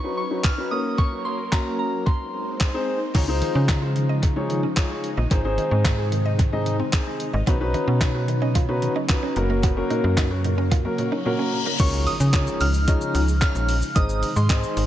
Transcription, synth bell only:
Already playing: C#6
0.17 C#6
0.44 F6
0.71 D#6
0.98 C#6
1.25 C6
1.52 A#5
1.79 A#5
2.06 C6
11.80 C#6
12.07 D#6
12.61 F6
13.42 F6
13.96 D#6
14.36 C6

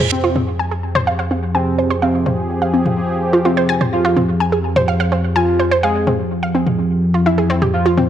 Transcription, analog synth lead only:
0.12 C4
1.55 C4
2.02 C4
3.45 C4
3.93 F4
5.36 F4
5.83 G#4
7.26 E4
7.74 F4

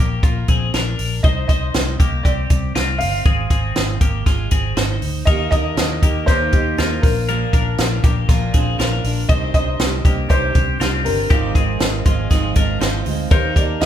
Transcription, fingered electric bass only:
Already playing: A#1
0.23 A#1
0.49 A#1
0.74 A#1
0.99 A#1
1.24 C2
1.49 C2
1.75 C2
2.00 C2
2.25 C2
2.51 C2
2.75 C2
3.01 G1
3.26 G#1
3.50 G#1
3.77 G#1
4.01 G#1
4.26 G#1
4.52 G#1
4.77 G#1
5.02 D2
5.27 D#2
5.52 D#2
5.78 D#2
6.03 D#2
6.28 D#2
6.53 D#2
6.78 D#2
7.03 A#1
7.53 A#1
7.79 A#1
8.04 A#1
8.29 A#1
8.54 A#1
8.79 A#1
9.04 A#1
9.30 C2
9.54 C2
9.79 C2
10.05 C2
10.30 C2
10.56 C2
10.80 C2
11.06 G1
11.31 G#1
11.55 G#1
11.81 G#1
12.06 G#1
12.31 G#1
12.56 G#1
12.81 G#1
13.06 D2
13.31 D#2
13.56 D#2
13.82 D#2

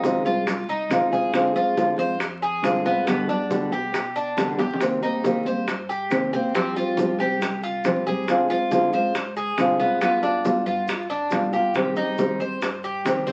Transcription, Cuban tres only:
Already playing: D#4
0.26 F4
0.69 D#4
1.12 G#4
1.56 F4
1.99 C5
2.42 G#4
2.86 B3
3.07 B3
3.29 D4
3.72 G4
4.16 D4
4.59 G4
5.03 D#4
5.46 C5
5.89 G4
6.33 C4
6.55 C4
6.76 F4
7.20 G4
7.63 F4
8.07 G#4
8.50 F4
8.93 C5
9.37 G#4
9.80 B3
10.01 B3
10.23 D4
10.66 F4
11.10 D4
11.53 G4
11.97 D#4
12.40 C5
12.84 G4
13.27 C4

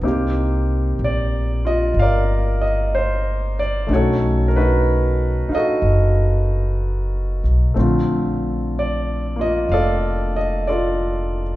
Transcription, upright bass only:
0.01 C2
0.99 A#1
1.94 G1
3.89 B1
5.49 muted upright bass stroke
5.82 F#1
7.44 B1
7.77 A#1
9.69 F1

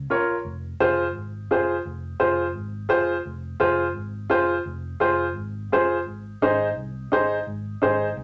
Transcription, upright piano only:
0.10 F4 A#4 C#5
0.80 F4 G#4 C5
1.51 F4 G#4 C5
2.20 F4 G#4 C5
2.89 F4 G#4 C5
3.60 F4 G#4 C5
4.30 F4 G#4 C5
5.00 F4 G#4 C5
5.72 F4 G#4 C5
6.42 D#4 G#4 C5
7.12 D#4 G#4 C5
7.82 D#4 G#4 C5

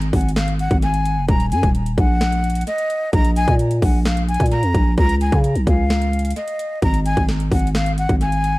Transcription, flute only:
0.14 F#5
0.36 F5
0.60 F#5
0.83 G#5
1.28 A#5
1.51 G#5
1.98 F#5
2.67 D#5
3.13 A#5
3.36 G#5
3.82 F#5
4.06 F5
4.28 G#5
4.51 A#5
4.97 A#5
5.21 G#5
5.67 F5
6.36 D#5
6.83 A#5
7.05 G#5
7.52 F#5
7.75 F5
7.98 F#5
8.21 G#5

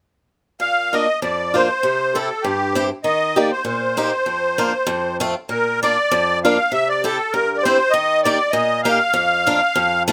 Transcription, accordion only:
0.61 F5
0.94 D#5
1.22 D5
1.55 C5
2.14 A4
2.42 G4
3.04 D#5
3.37 D5
3.51 C5
3.67 C5
5.50 A#4
5.83 D5
6.44 F5
6.73 E5
6.89 D5
7.05 A4
7.32 A#4
7.57 D5
7.63 C5
7.91 D#5
8.23 D5
8.50 D#5
8.83 F5

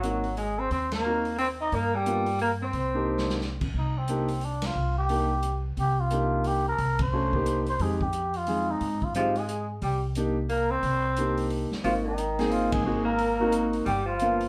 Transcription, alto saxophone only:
Already playing: F#3
0.37 G#3
0.58 C4
0.72 C4
0.92 A#3
1.38 C4
1.61 D#4
1.74 A#3
1.94 G3
2.41 A#3
2.62 C4
9.16 F3
9.36 G#3
9.82 G3
10.49 A#3
10.70 C4
11.84 F3
12.04 D#3
12.51 F3
12.71 G#3
13.04 A#3
13.85 G3
14.05 F3

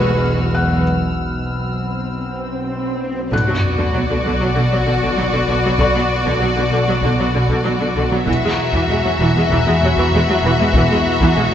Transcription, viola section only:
Already playing: G#3
3.32 D3
3.48 F#3
3.78 D3
3.93 F#3
4.10 D3
4.25 D3
4.41 F#3
4.56 D3
4.71 F#3
4.86 D3
5.03 D3
5.16 F#3
5.33 D3
5.48 D3
5.65 F#3
5.79 D3
5.95 F#3
6.26 D3
6.41 F#3
6.56 D3
6.72 D3
6.87 F#3
7.03 D3
7.18 F#3
7.34 D3
7.50 D3
7.64 F#3
7.80 D3
7.96 D3
8.11 F#3
8.26 E3
8.44 G#3
8.75 E3
8.91 G#3
9.05 F#3
9.21 E3
9.37 G#3
9.51 E3
9.67 G#3
9.84 F#3
9.99 E3
10.14 G#3
10.29 F#3
10.45 E3
10.60 G#3
10.76 E3
10.91 G#3
11.22 E3
11.37 G#3

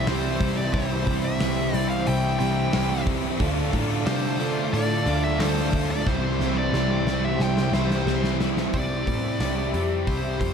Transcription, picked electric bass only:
0.07 C2
0.40 C2
0.73 C2
1.07 C2
1.41 C2
1.74 C2
2.08 C2
2.41 C2
2.73 C2
3.40 D2
3.73 A2
4.06 C3
4.73 A2
5.06 D2
5.39 D2
5.73 D2
6.06 C2
6.40 C2
6.73 C2
7.05 C2
7.40 C2
7.72 C2
8.06 C2
8.74 C2
9.07 A2
9.40 C2
9.74 F2
10.07 C2
10.41 F2

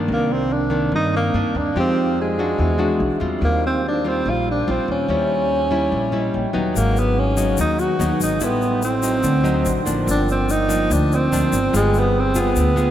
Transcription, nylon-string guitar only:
Already playing: D#3 A#3 D4
0.08 C3
0.70 D#3 A#3 D4
0.92 G2
1.35 D#3 A#3 D4
1.76 F3 G#3 D#4 G4
2.39 G#3 D4 F#4
2.58 E3
2.78 G#3 D4 F#4
3.20 G3 C4 F4
3.41 D#3
4.05 G3 C4 F4
4.26 A#2
4.68 G3 C4 F4
5.10 D#3 G3 C#4 E4
5.71 G3 C#4 E4
5.93 A#2
6.12 G3 C#4 E4
6.53 F#3 B3 D#4
6.74 G#2
7.37 F#3 B3 D#4
7.57 D#3
7.99 F#3 B3 D#4
8.41 A2 G3 E4
9.03 F#3 C4 D#4
9.23 D3
9.44 F#3 C4 D#4
9.85 F3 A#3 D4
10.07 G2
10.68 F3 A#3 D4
10.90 D3
11.32 F3 A#3 D4
11.73 G3 B3 F4 G#4
12.35 B3 F4 G#4
12.56 D3
12.76 B3 F4 G#4

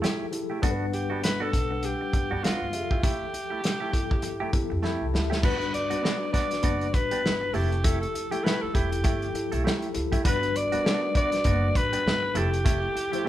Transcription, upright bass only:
0.63 G1
1.54 B1
2.14 G1
2.31 G2
2.44 muted upright bass stroke
2.62 G1
2.74 F1
3.94 G1
4.54 G1
4.71 F2
5.01 C2
5.14 D2
5.44 G1
5.92 muted upright bass stroke
6.64 F#1
6.94 A1
7.25 G1
7.55 F1
8.63 muted upright bass stroke
8.75 E1
9.05 G1
9.53 B1
9.96 D2
10.26 G1
10.74 muted upright bass stroke
11.46 F#1
11.76 A1
12.06 G1
12.36 F1

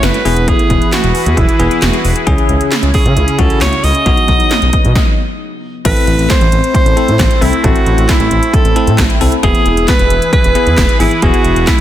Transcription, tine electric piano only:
Already playing: A3 C#4 E4
0.25 B3 E4 G#4
1.60 B3 E4 G#4
2.27 C#4 E4 G#4
3.39 C#4 E4 F#4
4.06 B3 D#4 F#4
5.85 C4 E4 A4
6.97 C4 E4 A4
7.41 C4 E4 A4
7.64 C4 E4 A4
8.76 C4 E4 A4
9.21 C4 E4 A4
9.43 B3 E4 G#4
10.55 B3 E4 G#4
11.00 B3 E4 G#4
11.23 B3 E4 G#4

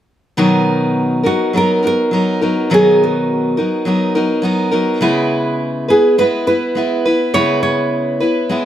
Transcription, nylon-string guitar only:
1.26 F#4
1.57 A#4
1.87 A#4
2.74 G#4
3.04 F#4
5.90 G#4
6.19 B4
6.47 B4
7.34 C#5
7.63 C#5

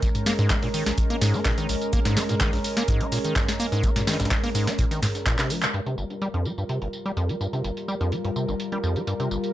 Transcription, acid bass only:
0.03 A#1
0.26 A#3
0.39 G#2
0.50 A#3
0.63 A#2
0.74 D#3
0.86 A#1
1.10 A#3
1.22 G#2
1.34 A#3
1.45 A#2
1.58 D#3
1.69 A#1
1.93 A#3
2.06 G#2
2.17 A#3
2.29 A#2
2.41 D#3
2.53 A#1
2.77 A#3
2.88 G#2
3.01 A#3
3.12 A#2
3.25 D#3
3.36 A#1
3.60 A#3
3.72 G#2
3.83 A#3
3.96 A#2
4.07 D#3
4.20 A#1
4.44 A#3
4.55 G#2
4.67 A#3
4.79 A#2
4.91 D#3
5.02 G#2
5.26 A#2
5.39 C3
5.50 F3
5.63 A#2
5.74 G2
5.86 C3
5.98 G1
6.22 G3
6.34 F2
6.46 G3
6.58 G2
6.69 C3
6.82 G1
7.06 G3
7.17 F2
7.29 G3
7.41 G2
7.53 C3
7.64 G1
7.88 G3
8.01 F2
8.12 G3
8.25 G2
8.36 C3
8.49 G1
8.72 G3
8.84 F2
8.96 G3
9.07 G2
9.20 C3
9.31 G1

